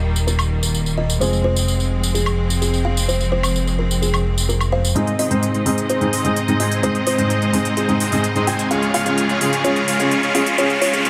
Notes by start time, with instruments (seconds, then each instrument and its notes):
Already playing: analog synth bass D#1, string section D#3 G3 A#3, grand piano G3 A#3 D#4 G4, kalimba D#5
0.16 tambourine
0.27 kalimba A#4, tambourine
0.39 tambourine, high woodblock
0.63 tambourine
0.74 tambourine
0.86 tambourine
0.98 kalimba D#5
1.10 tambourine
1.20 analog synth bass F1, string section F3 G#3 C4, grand piano G#3 C4 F4 G#4, kalimba C5, tambourine
1.33 tambourine
1.44 kalimba C5
1.56 tambourine
1.68 tambourine
1.80 tambourine
2.03 tambourine
2.15 kalimba G#4, tambourine
2.26 tambourine, high woodblock
2.50 tambourine
2.62 kalimba G#4, tambourine
2.74 tambourine
2.85 kalimba F5
2.97 tambourine
3.08 kalimba C5, tambourine
3.21 tambourine
3.32 kalimba C5
3.43 tambourine, high woodblock
3.56 tambourine
3.67 tambourine
3.79 kalimba A#4
3.91 tambourine
4.02 kalimba G#4, tambourine
4.14 tambourine, high woodblock
4.38 tambourine
4.49 kalimba A#4, tambourine
4.61 tambourine, high woodblock
4.72 kalimba C5 F5
4.85 tambourine
4.95 grand piano G#2 G#3 C4 D#4 G#4, string section G#2 G#3 C4 D#4 D#5, supersaw synth G#3 C4 D#4 C5 D#5, kalimba D#5, closed hi-hat, riser
5.07 closed hi-hat
5.19 supersaw synth G#3 C4 D#4 C5 D#5, kalimba D#5, open hi-hat
5.30 grand piano G#2 G#3 C4 D#4 C5, closed hi-hat
5.43 closed hi-hat
5.54 supersaw synth G#3 C4 D#4 C5 D#5, closed hi-hat
5.65 grand piano G#2 G#3 C4 D#4 G#4, supersaw synth G#3 C4 D#4 C5 D#5, open hi-hat
5.78 closed hi-hat
5.89 supersaw synth G#3 C4 D#4 C5 D#5, kalimba C5, closed hi-hat
6.01 grand piano G#2 G#3 C4 D#4 G#4, closed hi-hat
6.13 supersaw synth G#3 C4 D#4 C5 D#5, open hi-hat
6.24 grand piano G#2 G#3 C4 D#4 G#4, closed hi-hat
6.36 closed hi-hat
6.48 grand piano G#2 G#3 C4 D#4 G#4, supersaw synth G#3 C4 D#4 C5 D#5, closed hi-hat
6.60 supersaw synth G#3 C4 D#4 C5 G#5, kalimba D#5, open hi-hat
6.72 closed hi-hat
6.83 grand piano G#2 G#3 C4 D#4 G#4, supersaw synth G#3 C4 D#4 C5 D#5, kalimba C5, closed hi-hat
6.95 closed hi-hat
7.07 supersaw synth G#3 C4 D#4 C5 D#5, kalimba C5, open hi-hat
7.18 grand piano G#2 G#3 C4 D#4 C5, closed hi-hat
7.30 closed hi-hat
7.42 supersaw synth G#3 C4 D#4 C5 D#5, closed hi-hat
7.53 grand piano G#2 G#3 C4 D#4 G#4, supersaw synth G#3 C4 D#4 C5 D#5, open hi-hat
7.65 closed hi-hat
7.77 supersaw synth G#3 C4 D#4 C5 D#5, kalimba G#4, closed hi-hat
7.88 grand piano G#2 G#3 C4 D#4 G#4, closed hi-hat
8.00 supersaw synth G#3 C4 D#4 C5 D#5, open hi-hat
8.12 grand piano G#2 G#3 C4 D#4 G#4, open hi-hat
8.24 closed hi-hat
8.35 grand piano G#2 G#3 C4 D#4 G#4, supersaw synth G#3 C4 D#4 C5 D#5, closed hi-hat
8.47 supersaw synth G#3 C4 D#4 C5 G#5, kalimba G5, open hi-hat
8.59 closed hi-hat
8.70 string section C#2 C#3 F4 G#4, grand piano C#3 G#3 C#4 F4 G#4, supersaw synth G#3 C#4 F4 C#5 F5, kalimba F5, closed hi-hat
8.82 closed hi-hat
8.94 supersaw synth G#3 C#4 F4 C#5 F5, kalimba F5, open hi-hat
9.05 grand piano C#3 G#3 C#4 F4 C#5, closed hi-hat
9.18 closed hi-hat
9.29 supersaw synth G#3 C#4 F4 C#5 F5, closed hi-hat
9.40 grand piano C#3 G#3 C#4 F4 G#4, supersaw synth G#3 C#4 F4 C#5 F5, open hi-hat
9.53 closed hi-hat
9.64 grand piano C#3 G#3 C#4 F4 G#4, supersaw synth G#3 C#4 F4 C#5 F5, kalimba C#5, closed hi-hat
9.76 closed hi-hat
9.88 supersaw synth G#3 C#4 F4 C#5 F5, open hi-hat
9.99 grand piano C#3 G#3 C#4 F4 C#5, closed hi-hat
10.11 closed hi-hat
10.23 supersaw synth G#3 C#4 F4 C#5 F5, closed hi-hat
10.34 grand piano C#3 G#3 C#4 F4 G#4, supersaw synth G#3 C#4 F4 C#5 F5, kalimba F5, open hi-hat
10.46 closed hi-hat
10.58 grand piano C#3 G#3 C#4 F4 G#4, supersaw synth G#3 C#4 F4 C#5 F5, string section G4, kalimba C#5, closed hi-hat
10.70 closed hi-hat
10.82 supersaw synth G#3 C#4 F4 C#5 F5, kalimba C#5, open hi-hat
10.93 grand piano C#3 G#3 C#4 F4 C#5, closed hi-hat
11.05 grand piano C#3 G#3 C#4 F4 G#4, supersaw synth G#3 C#4 F4 C#5 F5, closed hi-hat